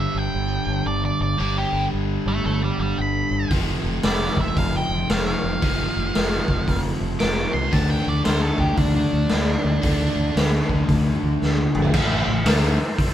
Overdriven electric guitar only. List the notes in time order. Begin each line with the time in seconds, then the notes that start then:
Already playing: G2 D3 G3
1.38 G2 D3 G3
3.51 F2 C3 F3
5.61 F2 C3 F3
7.71 D3 A3 D4
9.82 D3 A3 D4
11.94 A2 E3 A3
12.27 A2 E3
12.46 D3 A3 D4